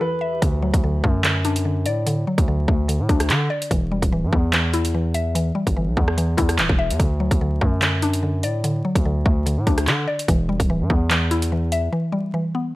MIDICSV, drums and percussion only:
0, 0, Header, 1, 2, 480
1, 0, Start_track
1, 0, Tempo, 410959
1, 492, Time_signature, 4, 2, 24, 8
1, 14896, End_track
2, 0, Start_track
2, 0, Title_t, "Drums"
2, 492, Note_on_c, 9, 36, 100
2, 493, Note_on_c, 9, 42, 83
2, 609, Note_off_c, 9, 36, 0
2, 610, Note_off_c, 9, 42, 0
2, 859, Note_on_c, 9, 36, 93
2, 862, Note_on_c, 9, 42, 76
2, 976, Note_off_c, 9, 36, 0
2, 979, Note_off_c, 9, 42, 0
2, 1212, Note_on_c, 9, 36, 91
2, 1328, Note_off_c, 9, 36, 0
2, 1451, Note_on_c, 9, 39, 108
2, 1454, Note_on_c, 9, 42, 75
2, 1568, Note_off_c, 9, 39, 0
2, 1571, Note_off_c, 9, 42, 0
2, 1690, Note_on_c, 9, 42, 80
2, 1807, Note_off_c, 9, 42, 0
2, 1821, Note_on_c, 9, 42, 91
2, 1938, Note_off_c, 9, 42, 0
2, 2168, Note_on_c, 9, 42, 74
2, 2285, Note_off_c, 9, 42, 0
2, 2413, Note_on_c, 9, 42, 81
2, 2530, Note_off_c, 9, 42, 0
2, 2779, Note_on_c, 9, 36, 89
2, 2782, Note_on_c, 9, 42, 74
2, 2895, Note_off_c, 9, 36, 0
2, 2898, Note_off_c, 9, 42, 0
2, 3131, Note_on_c, 9, 36, 89
2, 3248, Note_off_c, 9, 36, 0
2, 3374, Note_on_c, 9, 42, 73
2, 3491, Note_off_c, 9, 42, 0
2, 3612, Note_on_c, 9, 36, 82
2, 3612, Note_on_c, 9, 42, 48
2, 3729, Note_off_c, 9, 36, 0
2, 3729, Note_off_c, 9, 42, 0
2, 3739, Note_on_c, 9, 37, 97
2, 3739, Note_on_c, 9, 42, 81
2, 3853, Note_on_c, 9, 39, 117
2, 3855, Note_off_c, 9, 42, 0
2, 3855, Note_on_c, 9, 42, 70
2, 3856, Note_off_c, 9, 37, 0
2, 3969, Note_off_c, 9, 39, 0
2, 3972, Note_off_c, 9, 42, 0
2, 4226, Note_on_c, 9, 42, 87
2, 4332, Note_on_c, 9, 36, 104
2, 4334, Note_off_c, 9, 42, 0
2, 4334, Note_on_c, 9, 42, 81
2, 4449, Note_off_c, 9, 36, 0
2, 4451, Note_off_c, 9, 42, 0
2, 4700, Note_on_c, 9, 36, 85
2, 4703, Note_on_c, 9, 42, 74
2, 4816, Note_off_c, 9, 36, 0
2, 4819, Note_off_c, 9, 42, 0
2, 5052, Note_on_c, 9, 36, 88
2, 5169, Note_off_c, 9, 36, 0
2, 5292, Note_on_c, 9, 39, 115
2, 5295, Note_on_c, 9, 42, 75
2, 5409, Note_off_c, 9, 39, 0
2, 5412, Note_off_c, 9, 42, 0
2, 5531, Note_on_c, 9, 42, 80
2, 5648, Note_off_c, 9, 42, 0
2, 5662, Note_on_c, 9, 42, 89
2, 5779, Note_off_c, 9, 42, 0
2, 6009, Note_on_c, 9, 42, 75
2, 6126, Note_off_c, 9, 42, 0
2, 6253, Note_on_c, 9, 42, 83
2, 6370, Note_off_c, 9, 42, 0
2, 6619, Note_on_c, 9, 36, 87
2, 6623, Note_on_c, 9, 42, 76
2, 6736, Note_off_c, 9, 36, 0
2, 6740, Note_off_c, 9, 42, 0
2, 6972, Note_on_c, 9, 36, 88
2, 7088, Note_off_c, 9, 36, 0
2, 7099, Note_on_c, 9, 37, 97
2, 7215, Note_off_c, 9, 37, 0
2, 7215, Note_on_c, 9, 42, 76
2, 7332, Note_off_c, 9, 42, 0
2, 7450, Note_on_c, 9, 42, 78
2, 7452, Note_on_c, 9, 36, 83
2, 7567, Note_off_c, 9, 42, 0
2, 7569, Note_off_c, 9, 36, 0
2, 7580, Note_on_c, 9, 37, 94
2, 7581, Note_on_c, 9, 42, 89
2, 7692, Note_on_c, 9, 39, 113
2, 7695, Note_off_c, 9, 42, 0
2, 7695, Note_on_c, 9, 42, 69
2, 7696, Note_off_c, 9, 37, 0
2, 7809, Note_off_c, 9, 39, 0
2, 7812, Note_off_c, 9, 42, 0
2, 7819, Note_on_c, 9, 36, 100
2, 7936, Note_off_c, 9, 36, 0
2, 8066, Note_on_c, 9, 42, 86
2, 8172, Note_on_c, 9, 36, 103
2, 8173, Note_off_c, 9, 42, 0
2, 8173, Note_on_c, 9, 42, 84
2, 8289, Note_off_c, 9, 36, 0
2, 8290, Note_off_c, 9, 42, 0
2, 8539, Note_on_c, 9, 36, 89
2, 8543, Note_on_c, 9, 42, 74
2, 8656, Note_off_c, 9, 36, 0
2, 8660, Note_off_c, 9, 42, 0
2, 8892, Note_on_c, 9, 36, 88
2, 9009, Note_off_c, 9, 36, 0
2, 9132, Note_on_c, 9, 39, 110
2, 9135, Note_on_c, 9, 42, 76
2, 9249, Note_off_c, 9, 39, 0
2, 9252, Note_off_c, 9, 42, 0
2, 9371, Note_on_c, 9, 42, 76
2, 9488, Note_off_c, 9, 42, 0
2, 9501, Note_on_c, 9, 42, 88
2, 9618, Note_off_c, 9, 42, 0
2, 9849, Note_on_c, 9, 42, 74
2, 9966, Note_off_c, 9, 42, 0
2, 10093, Note_on_c, 9, 42, 83
2, 10210, Note_off_c, 9, 42, 0
2, 10459, Note_on_c, 9, 36, 90
2, 10463, Note_on_c, 9, 42, 74
2, 10576, Note_off_c, 9, 36, 0
2, 10579, Note_off_c, 9, 42, 0
2, 10812, Note_on_c, 9, 36, 91
2, 10929, Note_off_c, 9, 36, 0
2, 11055, Note_on_c, 9, 42, 74
2, 11172, Note_off_c, 9, 42, 0
2, 11292, Note_on_c, 9, 36, 80
2, 11292, Note_on_c, 9, 42, 47
2, 11409, Note_off_c, 9, 36, 0
2, 11409, Note_off_c, 9, 42, 0
2, 11419, Note_on_c, 9, 37, 96
2, 11419, Note_on_c, 9, 42, 81
2, 11532, Note_on_c, 9, 39, 117
2, 11534, Note_off_c, 9, 42, 0
2, 11534, Note_on_c, 9, 42, 70
2, 11536, Note_off_c, 9, 37, 0
2, 11649, Note_off_c, 9, 39, 0
2, 11651, Note_off_c, 9, 42, 0
2, 11905, Note_on_c, 9, 42, 84
2, 12012, Note_on_c, 9, 36, 106
2, 12013, Note_off_c, 9, 42, 0
2, 12013, Note_on_c, 9, 42, 84
2, 12128, Note_off_c, 9, 36, 0
2, 12130, Note_off_c, 9, 42, 0
2, 12379, Note_on_c, 9, 36, 90
2, 12382, Note_on_c, 9, 42, 78
2, 12496, Note_off_c, 9, 36, 0
2, 12499, Note_off_c, 9, 42, 0
2, 12731, Note_on_c, 9, 36, 88
2, 12848, Note_off_c, 9, 36, 0
2, 12971, Note_on_c, 9, 39, 113
2, 12974, Note_on_c, 9, 42, 75
2, 13088, Note_off_c, 9, 39, 0
2, 13091, Note_off_c, 9, 42, 0
2, 13210, Note_on_c, 9, 42, 79
2, 13327, Note_off_c, 9, 42, 0
2, 13341, Note_on_c, 9, 42, 90
2, 13458, Note_off_c, 9, 42, 0
2, 13688, Note_on_c, 9, 42, 73
2, 13805, Note_off_c, 9, 42, 0
2, 14896, End_track
0, 0, End_of_file